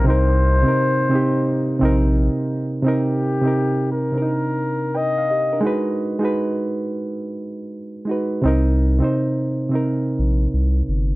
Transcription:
Already playing: C3 G3 A#3 C4 D4 D#4 A#4
0.04 C2 C3 C4 D#4 C5
0.10 A#4
0.62 C3 C4
0.66 D#4 A#4
1.09 C3 C4
1.13 D#4 G4
1.79 A#1 C3 C4 D#4
1.85 A#4
2.82 C3 C4 D#4
2.87 G4 A#4
3.42 C3 C4 D#4
3.47 A#4
3.92 A#4
4.12 C3 C4
4.16 D4 A#4
4.22 D#4
4.95 A#4 D#5 G5
5.18 F5
5.30 G4 D#5
5.53 D4 A#4
5.61 G#3 D#4
5.65 F#4 B4
6.19 G#3 D#4 F#4
6.25 B4
8.05 G#3 D#4 F#4
8.11 B4
8.42 C2 C3 C4 D#4
8.48 A#4
8.98 C3 C4 D#4
9.04 C5
9.69 C3 C4 D#4
9.75 A#4
10.19 A#1
10.54 C2
10.88 G1

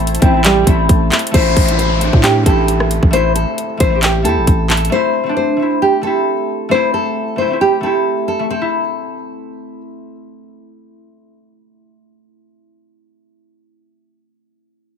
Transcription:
Already playing: A1 A3 E4 A4 C5 A5
0.07 closed hi-hat
0.15 closed hi-hat
0.19 A1 A3 C4, kick, closed hi-hat
0.25 E4
0.31 A3 C4
0.37 E4
0.44 G3, clap, closed hi-hat
0.64 A1 A3 C4, kick, closed hi-hat
0.70 E4
0.89 A1, kick, closed hi-hat
1.12 A3, clap, closed hi-hat
1.19 closed hi-hat
1.27 closed hi-hat
1.31 A1 A3 C4 C5, kick, closed hi-hat, crash, downlifter
1.37 E4
1.57 A1, kick, closed hi-hat, open hi-hat
1.66 A3 C4, closed hi-hat
1.71 E4
1.79 C5, closed hi-hat
1.98 A3 C4, closed hi-hat
2.04 D4
2.13 A2, kick
2.24 G4, clap, closed hi-hat
2.43 A1 A3 C4 A4, kick, closed hi-hat
2.49 E4
2.68 closed hi-hat
2.80 cross-stick
2.91 closed hi-hat
3.03 A1, kick
3.11 A3 C4 C5, closed hi-hat
3.16 E4
3.35 A4, closed hi-hat
3.58 closed hi-hat
3.77 A1 A3 C4 C5, kick, closed hi-hat
3.83 E4
3.90 A3 C4
3.95 G4
4.02 G4, clap, closed hi-hat
4.22 E2 A3 C4 A4, closed hi-hat
4.28 E4
4.37 A1
4.47 A1, kick, closed hi-hat
4.70 A4, clap, closed hi-hat
4.77 closed hi-hat
4.85 closed hi-hat
4.90 A3 C4 C5
4.95 E4
5.24 A3 C4
5.29 D4
5.37 C5
5.57 A3 C4
5.62 E4
5.82 G4
6.01 A3 C4 A4
6.07 E4
6.69 A3 C4 C5
6.74 E4
6.94 A4
7.36 A3 C4 C5
7.41 E4
7.48 A3 C4
7.53 E4
7.61 G4
7.81 A3 C4 A4
7.86 E4
8.28 A4
8.39 A3
8.50 C4 A4
8.62 E4

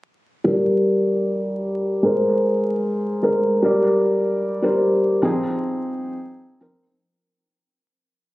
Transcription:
0.44 G3 G4 A#4 D5
2.03 G#3 G#4 A#4 C5
3.23 G#3 G#4 A#4 C5
3.62 G3 G4 A#4 D5
4.62 G3 G4 A#4 C5
5.22 F3 C4 D#4 G#4
6.60 F3 C4 D#4 A#4

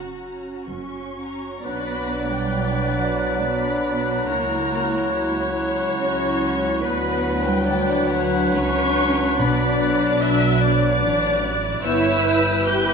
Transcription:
Already playing: F#1 F#2 C#4 F#4 A#5
0.17 C#4 F#4 A#5
0.68 F#1 F#2 C#4 C#6
1.18 C#4 F#4 A#5
1.64 B1 F#3 B3 D4 F#4 B4 D5 B5 F#6
2.30 G3 G5
2.53 E4 B4
2.97 F#3 F#5
3.42 F#3 B3 D4 D5 B5
3.86 D4
4.28 C#2 F#3 A#3 E4 F#4 A#4 C#5 A#5
4.70 F#4
5.12 E4 C#5
5.55 E4
5.97 F#3 C#4 E4 F#4 C#6
6.81 D2 F#3 B3 D4 F#4 B4 B5 F#6
7.44 G3 G5
7.65 D4 E4 A4 D5
8.10 F#3 B4 C#5 F#5
8.55 C#2 C#4 B4 C#5 C#6
9.38 B1 B2 F#3 B3 D4 D5 B5
10.22 E5
10.62 D5
11.01 A1 D4 D5
11.42 E4
11.83 G1 E3 B3 E4 B4 C#5 E6 G6
12.24 B4
12.66 G4 B4 G6

